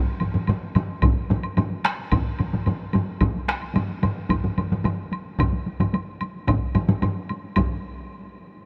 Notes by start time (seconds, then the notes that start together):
0.20 taiko low-mid, taiko mid, taiko high, high woodblock
0.34 taiko low-mid, taiko mid, taiko high
0.47 taiko low-mid, taiko mid, taiko high, high woodblock
0.62 taiko high
0.75 taiko low-mid, taiko mid, taiko high, high woodblock
0.89 taiko high
1.02 taiko, taiko low-mid, taiko mid, taiko high, high woodblock
1.17 taiko high
1.30 taiko low-mid, taiko mid
1.43 taiko high, high woodblock
1.57 taiko low-mid, taiko mid, taiko high, high woodblock
1.71 taiko high
1.84 taiko rim, taiko high, high woodblock
1.99 taiko high
2.12 taiko, taiko low-mid, taiko mid, taiko high, high woodblock
2.26 taiko high
2.39 taiko low-mid, taiko mid, taiko high, high woodblock
2.53 taiko low-mid, taiko mid, taiko high
2.66 taiko low-mid, taiko mid, taiko high, high woodblock
2.80 taiko high
2.93 taiko low-mid, taiko mid, taiko high, high woodblock
3.07 taiko high
3.21 taiko, taiko low-mid, taiko mid, taiko high, high woodblock
3.35 taiko high
3.48 taiko rim, taiko high
3.61 taiko high, high woodblock
3.75 taiko low-mid, taiko mid, taiko high, high woodblock
3.89 taiko high
4.02 taiko low-mid, taiko mid, taiko high, high woodblock
4.16 taiko high
4.29 taiko, taiko low-mid, taiko mid, taiko high, high woodblock
4.44 taiko low-mid, taiko mid, taiko high
4.57 taiko low-mid, taiko mid, taiko high, high woodblock
4.71 taiko low-mid, taiko mid, taiko high
4.85 taiko low-mid, taiko mid, taiko high, high woodblock
4.98 taiko high
5.12 taiko high, high woodblock
5.25 taiko high
5.39 taiko, taiko low-mid, taiko mid, taiko high, high woodblock
5.53 taiko high
5.66 taiko high
5.80 taiko low-mid, taiko mid, taiko high, high woodblock
5.93 taiko high, high woodblock
6.07 taiko high
6.21 taiko high, high woodblock
6.35 taiko high
6.47 taiko, taiko low-mid, taiko mid, taiko high, high woodblock
6.63 taiko high
6.75 taiko low-mid, taiko mid, taiko high, high woodblock
6.89 taiko low-mid, taiko mid
7.02 taiko low-mid, taiko mid, taiko high, high woodblock
7.17 taiko high
7.29 taiko high, high woodblock
7.44 taiko high
7.56 taiko, taiko low-mid, taiko mid, taiko high, high woodblock